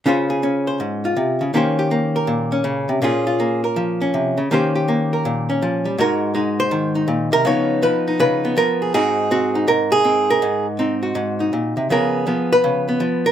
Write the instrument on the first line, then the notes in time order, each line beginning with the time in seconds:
hollow-body jazz guitar
0.06 C#3 C#4 F4 G#4 C5
0.30 G#4
0.43 C#4
0.67 C5
0.80 G#2
1.05 F4
1.16 C3
1.41 C#3
1.54 D#3 A#3 C#4 G4 C5
1.79 G4
1.91 A#3
2.16 A#4
2.27 A#2
2.52 C#4
2.64 C#3
2.89 C3
3.02 A#2 A#3 C#4 F4 G#4
3.27 F4
3.40 A#3
3.64 A#4
3.76 F3
4.01 C#4
4.14 C3
4.38 C#3
4.51 D#3 A#3 C#4 G4 C5
4.75 G4
4.88 A#3
5.13 A#4
5.25 A#2
5.50 C#4
5.62 F3
5.85 G3
5.98 G#2 G#3 D#4 F#4 A#4
6.35 G#3 D#4
6.60 C5
6.71 D#3
6.95 D#4
7.08 A#2
7.32 C3 A#4
7.45 C#3 F3 B3 D#4 C#5
7.82 F3 B4
8.08 D#4
8.20 C#3 B4
8.45 B3
8.56 F3 A#4
8.82 G#4
8.94 G#2 C4 D#4 F#4 G#4
9.31 C4 F#4
9.55 D#4
9.68 G#2 A#4
9.92 G#4
10.05 C4
10.30 A#4
10.42 G#2
10.79 C4 D#4
11.03 F#4
11.15 G#2
11.40 D#4
11.53 A#2
11.77 C3
11.90 C#3 F3 B3 G#4 A#4
12.27 F3 B3
12.53 B4
12.64 C#3
12.89 B3
13.00 F3
13.26 A#4